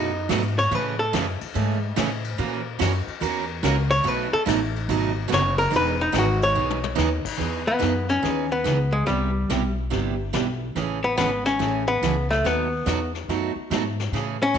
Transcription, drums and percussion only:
0.30 snare medium
0.30 hi-hat pedal medium
0.30 ride medium
0.58 ride medium
0.72 ride medium
1.14 snare medium
1.14 hi-hat pedal medium
1.14 ride medium
1.41 ride medium
1.55 ride medium
1.97 snare medium
1.97 hi-hat pedal medium
1.97 ride medium
2.24 ride medium
2.39 ride medium
2.81 snare medium
2.81 hi-hat pedal medium
2.81 ride medium
3.08 ride medium
3.23 ride medium
3.64 snare medium
3.64 hi-hat pedal medium
3.64 ride medium
3.92 ride medium
4.06 ride medium
4.48 snare medium
4.48 hi-hat pedal medium
4.48 ride medium
4.76 ride medium
4.90 ride medium
5.32 snare medium
5.32 hi-hat pedal medium
5.32 ride medium
5.59 ride medium
5.73 ride medium
6.14 snare medium
6.14 hi-hat pedal medium
6.14 ride medium
6.42 ride medium
6.70 mid tom medium
6.84 mid tom loud
6.98 snare medium
6.98 hi-hat pedal medium
7.25 kick medium
7.25 crash loud
7.39 brush sweep soft
7.39 snare soft
7.81 snare medium
7.81 hi-hat pedal medium
8.09 snare soft
8.24 brush sweep soft
8.24 snare soft
8.66 snare medium
8.66 hi-hat pedal soft
9.08 brush sweep soft
9.08 snare soft
9.50 snare medium
9.50 hi-hat pedal soft
9.92 brush sweep medium
9.92 snare soft
10.34 snare medium
10.34 hi-hat pedal medium
10.76 brush sweep soft
10.76 snare soft
11.18 snare medium
11.18 hi-hat pedal medium
11.46 snare soft
11.61 brush sweep soft
11.61 snare soft
12.03 snare medium
12.03 hi-hat pedal medium
12.31 snare soft
12.45 brush sweep medium
12.45 snare soft
12.87 snare medium
12.87 hi-hat pedal medium
13.15 snare soft
13.30 brush sweep soft
13.30 snare soft
13.72 snare medium
13.72 hi-hat pedal medium
13.99 snare medium
14.15 brush sweep soft
14.15 snare soft

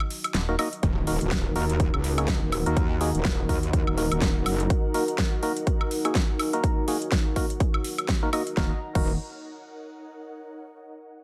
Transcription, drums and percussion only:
0.00 high woodblock medium
0.10 open hi-hat loud
0.24 closed hi-hat medium
0.24 high woodblock medium
0.34 snare loud
0.34 closed hi-hat medium
0.59 open hi-hat loud
0.59 high woodblock medium
0.73 closed hi-hat medium
0.83 kick loud
0.83 closed hi-hat medium
1.07 open hi-hat loud
1.21 closed hi-hat medium
1.31 kick loud
1.31 snare loud
1.31 closed hi-hat medium
1.56 open hi-hat medium
1.70 closed hi-hat medium
1.80 kick loud
1.80 closed hi-hat medium
1.94 high woodblock medium
2.04 open hi-hat loud
2.18 closed hi-hat medium
2.18 high woodblock medium
2.28 kick loud
2.28 snare loud
2.28 closed hi-hat medium
2.52 open hi-hat medium
2.52 high woodblock medium
2.66 closed hi-hat medium
2.77 kick loud
2.77 closed hi-hat medium
3.01 open hi-hat loud
3.15 closed hi-hat medium
3.25 kick loud
3.25 snare loud
3.25 closed hi-hat medium
3.49 kick medium
3.49 open hi-hat medium
3.63 closed hi-hat medium
3.73 kick loud
3.73 closed hi-hat medium
3.87 high woodblock medium
3.98 open hi-hat loud
4.12 closed hi-hat medium
4.12 high woodblock medium
4.22 kick loud
4.22 snare loud
4.22 closed hi-hat medium
4.46 open hi-hat loud
4.46 high woodblock medium
4.60 closed hi-hat medium
4.70 kick loud
4.70 closed hi-hat medium
4.94 open hi-hat loud
5.08 closed hi-hat medium
5.18 kick loud
5.18 snare loud
5.18 closed hi-hat medium
5.43 open hi-hat loud
5.57 closed hi-hat medium
5.67 kick loud
5.67 closed hi-hat medium
5.81 high woodblock medium
5.91 open hi-hat loud
6.05 closed hi-hat medium
6.05 high woodblock medium
6.15 kick loud
6.15 snare loud
6.15 closed hi-hat medium
6.39 open hi-hat loud
6.39 high woodblock medium
6.53 closed hi-hat medium
6.64 kick loud
6.64 closed hi-hat soft
6.88 open hi-hat loud
7.02 closed hi-hat medium
7.12 kick loud
7.12 snare loud
7.12 closed hi-hat medium
7.36 kick medium
7.36 open hi-hat medium
7.50 closed hi-hat medium
7.60 kick loud
7.60 closed hi-hat medium
7.74 high woodblock medium
7.84 open hi-hat loud
7.98 closed hi-hat medium
7.98 high woodblock medium
8.08 kick loud
8.08 snare loud
8.08 closed hi-hat medium
8.33 open hi-hat medium
8.33 high woodblock medium
8.47 closed hi-hat medium
8.57 kick loud
8.57 snare medium
8.95 kick loud
8.95 crash medium

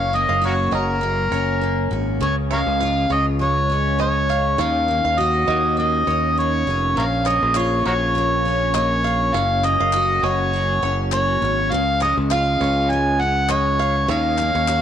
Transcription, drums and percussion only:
7.26 clap medium
7.55 clap medium
8.74 clap medium
9.64 clap medium
9.93 clap medium
11.12 clap medium
12.01 clap medium
12.31 clap medium
13.49 clap medium
14.38 clap medium
14.68 clap medium

